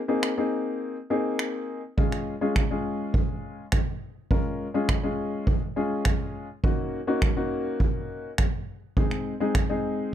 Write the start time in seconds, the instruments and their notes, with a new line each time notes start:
0.08 grand piano A#3 C4 D#4 G#4
0.23 finger snap
0.37 grand piano A#3 C4 D#4 G#4
1.10 grand piano A#3 C4 D#4 G#4
1.39 finger snap
1.97 grand piano G#3 C#4 F4 G#4, kick
2.12 finger snap
2.41 grand piano G#3 C#4 F4 G#4
2.56 finger snap, kick
2.71 grand piano G#3 C#4 F4 G#4
3.14 kick
3.72 finger snap, kick
4.31 grand piano G#3 C#4 F4 A#4, kick
4.74 grand piano G#3 C#4 F4 G#4
4.89 finger snap, kick
5.03 grand piano G#3 C#4 F4 G#4
5.47 kick
5.76 grand piano G#3 C#4 F4 G#4
6.05 finger snap, kick
6.64 grand piano A#3 C#4 D#4 F#4, kick
7.07 grand piano A#3 C#4 D#4 F#4
7.22 finger snap, kick
7.36 grand piano A#3 C#4 D#4 F#4
7.80 kick
8.38 finger snap, kick
8.97 grand piano G#3 C4 D#4 G#4, kick
9.11 finger snap
9.40 grand piano G#3 C4 D#4 G#4
9.55 finger snap, kick
9.69 grand piano G#3 C4 D#4 G#4